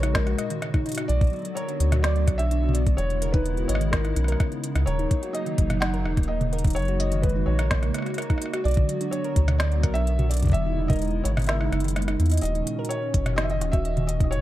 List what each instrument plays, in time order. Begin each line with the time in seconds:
Already playing: analog synth bass A#1, analog synth pad A#2 C#3 G#3 F#4, felt piano C#5
0.03 synth pluck D#4, cross-stick, closed hi-hat
0.14 felt piano A#4, kick, snare, closed hi-hat
0.27 synth pluck F#4, cross-stick, closed hi-hat
0.38 synth pluck D#5, cross-stick, closed hi-hat
0.50 synth pluck D#3, closed hi-hat
0.62 cross-stick, closed hi-hat
0.74 synth pluck D#4, kick, cross-stick, closed hi-hat
0.86 synth pluck D#4, closed hi-hat
0.89 closed hi-hat
0.92 closed hi-hat
0.95 synth pluck D#4, cross-stick, closed hi-hat
1.08 analog synth bass B1, analog synth pad D3 F#3 B3, felt piano D5, closed hi-hat
1.21 kick, closed hi-hat
1.24 closed hi-hat
1.27 closed hi-hat
1.30 closed hi-hat
1.33 closed hi-hat
1.36 closed hi-hat
1.39 closed hi-hat
1.42 closed hi-hat
1.45 closed hi-hat
1.55 synth pluck A#4, felt piano C#5, closed hi-hat
1.69 synth pluck D4, closed hi-hat
1.80 analog synth bass D2, closed hi-hat
1.92 synth pluck F#4, cross-stick, closed hi-hat, mid tom
2.02 felt piano D5, synth pluck D5, snare, closed hi-hat
2.16 synth pluck D3, closed hi-hat
2.28 analog synth bass B1, kick, cross-stick, closed hi-hat
2.38 synth pluck D4, felt piano E5, closed hi-hat
2.51 synth pluck D4, closed hi-hat
2.63 synth pluck D4
2.69 mid tom
2.73 felt piano D5, closed hi-hat
2.87 kick, closed hi-hat
2.97 analog synth bass E1, analog synth pad C#3 G#3 E4, felt piano C#5, closed hi-hat
3.10 closed hi-hat
3.22 synth pluck A#4, closed hi-hat
3.32 synth pluck D#4, felt piano B4, kick, closed hi-hat
3.46 closed hi-hat
3.57 synth pluck F#4, closed hi-hat
3.68 analog synth bass G#1, felt piano C#5, synth pluck D#5, closed hi-hat
3.75 cross-stick
3.81 synth pluck D#3, closed hi-hat
3.92 felt piano A#4, kick, snare, closed hi-hat
4.05 synth pluck D#4, cross-stick, closed hi-hat
4.16 analog synth bass B1, synth pluck C#4, cross-stick, closed hi-hat
4.24 synth pluck A#4, cross-stick, closed hi-hat
4.32 cross-stick
4.40 kick, cross-stick, closed hi-hat
4.52 closed hi-hat
4.64 closed hi-hat
4.75 analog synth bass C#2, cross-stick, closed hi-hat
4.86 analog synth bass D#1, analog synth pad F#3 A#3 D#4, synth pluck A#4, felt piano C#5, closed hi-hat
4.99 synth pluck D#4, closed hi-hat
5.11 kick, closed hi-hat
5.23 synth pluck F#4, closed hi-hat
5.33 felt piano D#5, synth pluck D#5, closed hi-hat
5.46 synth pluck D#3, closed hi-hat
5.58 analog synth bass F#1, kick, closed hi-hat
5.70 synth pluck D#4, cross-stick, closed hi-hat, mid tom
5.80 synth pluck D#4, felt piano F#5, snare, closed hi-hat
5.94 synth pluck A#4, closed hi-hat
6.05 analog synth bass D#1, cross-stick
6.17 kick, closed hi-hat
6.23 closed hi-hat
6.28 felt piano D#5
6.41 closed hi-hat, mid tom
6.53 synth pluck A#4, closed hi-hat
6.59 closed hi-hat
6.64 synth pluck D#4, kick, closed hi-hat
6.67 closed hi-hat
6.70 closed hi-hat
6.73 felt piano C#5, closed hi-hat
6.76 analog synth bass F#1, analog synth pad G#3 A#3 F#4, closed hi-hat
6.79 closed hi-hat
6.82 closed hi-hat
6.85 closed hi-hat
6.88 synth pluck F#4, closed hi-hat
7.00 synth pluck D#5, closed hi-hat
7.12 synth pluck D#3, closed hi-hat
7.22 felt piano B4, kick, closed hi-hat
7.29 closed hi-hat
7.35 synth pluck D#4
7.46 analog synth bass A#1, synth pluck D#4, felt piano C#5
7.59 synth pluck A#4, cross-stick, closed hi-hat
7.71 kick, snare, closed hi-hat
7.83 cross-stick, closed hi-hat
7.94 cross-stick, closed hi-hat
7.98 cross-stick
8.02 cross-stick
8.06 cross-stick, closed hi-hat
8.10 cross-stick
8.14 synth pluck A#4, cross-stick, closed hi-hat
8.18 cross-stick, closed hi-hat
8.22 closed hi-hat
8.30 synth pluck D#4, kick, cross-stick, closed hi-hat
8.38 cross-stick, closed hi-hat
8.46 cross-stick
8.53 synth pluck F#4, cross-stick, closed hi-hat
8.64 analog synth bass B1, analog synth pad D3 F#3 B3, felt piano D5, synth pluck D5, closed hi-hat
8.68 closed hi-hat
8.71 closed hi-hat
8.74 synth pluck D3, kick, closed hi-hat
8.89 closed hi-hat
9.01 synth pluck D4, closed hi-hat
9.11 synth pluck D4, felt piano C#5, closed hi-hat
9.24 synth pluck A#4, closed hi-hat
9.36 analog synth bass D2, kick, closed hi-hat
9.48 cross-stick, closed hi-hat, mid tom
9.58 felt piano D5, snare, closed hi-hat
9.72 closed hi-hat
9.83 analog synth bass B1, synth pluck A#4, kick, cross-stick, closed hi-hat
9.94 synth pluck D4, felt piano E5, closed hi-hat
10.07 closed hi-hat
10.19 synth pluck F#4, closed hi-hat, mid tom
10.29 felt piano D5, synth pluck D5, closed hi-hat
10.34 closed hi-hat
10.37 closed hi-hat
10.43 synth pluck D3, kick, closed hi-hat
10.45 kick, closed hi-hat
10.47 kick, closed hi-hat
10.50 kick, closed hi-hat
10.52 analog synth bass E1, analog synth pad C#3 G#3 E4, felt piano E5, kick, closed hi-hat
10.66 synth pluck D#4
10.78 synth pluck D#4, felt piano E5
10.88 synth pluck A#4, felt piano D#5, kick, closed hi-hat, mid tom
10.93 closed hi-hat
10.96 closed hi-hat
10.99 closed hi-hat
11.02 closed hi-hat
11.05 closed hi-hat
11.11 closed hi-hat
11.24 analog synth bass G#1, felt piano C#5, closed hi-hat
11.37 cross-stick, closed hi-hat, mid tom
11.39 closed hi-hat
11.42 closed hi-hat
11.44 closed hi-hat
11.46 synth pluck A#4, felt piano E5, snare, closed hi-hat
11.61 synth pluck D#4, cross-stick
11.72 analog synth bass F#1, cross-stick, closed hi-hat
11.80 synth pluck D#3, closed hi-hat
11.84 closed hi-hat
11.88 closed hi-hat
11.90 closed hi-hat
11.96 synth pluck A#3, cross-stick, closed hi-hat
12.02 closed hi-hat
12.08 synth pluck D#4, cross-stick, closed hi-hat
12.20 analog synth bass E2, closed hi-hat
12.26 closed hi-hat
12.30 closed hi-hat
12.31 synth pluck D#5, closed hi-hat
12.33 closed hi-hat
12.37 closed hi-hat
12.41 analog synth bass D#1, analog synth pad A#2 D#3 C#4 F#4, felt piano D#5, closed hi-hat
12.43 closed hi-hat
12.45 closed hi-hat
12.55 synth pluck D#4, closed hi-hat
12.67 synth pluck D#4, closed hi-hat
12.79 synth pluck A#4
12.85 closed hi-hat
12.89 felt piano C#5, closed hi-hat
13.14 analog synth bass F#1, kick, closed hi-hat
13.26 cross-stick, closed hi-hat, mid tom
13.36 synth pluck D#4, felt piano D#5, snare, closed hi-hat
13.43 felt piano E5
13.50 synth pluck D#4, felt piano D#5, closed hi-hat
13.61 analog synth bass D#1, cross-stick, closed hi-hat
13.72 synth pluck F#4, felt piano E5, kick, closed hi-hat
13.85 synth pluck D#5, closed hi-hat
13.97 synth pluck D#3, closed hi-hat, mid tom
14.07 felt piano D#5, closed hi-hat
14.20 synth pluck D#4, felt piano D#5, kick, closed hi-hat
14.31 analog synth bass F#1, analog synth pad C#3 G#3, synth pluck D#4, felt piano C#5, closed hi-hat